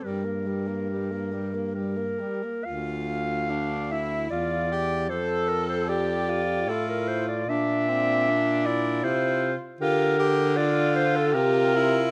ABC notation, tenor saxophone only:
X:1
M:3/4
L:1/16
Q:1/4=76
K:Gm
V:1 name="Tenor saxophone"
G, B, G, B, G, B, G, B, G, B, G, B, | [K:Dm] F4 D2 E2 F2 G2 | A4 G2 F2 E4 | D8 E3 z |
F2 G2 F4 F2 E2 |]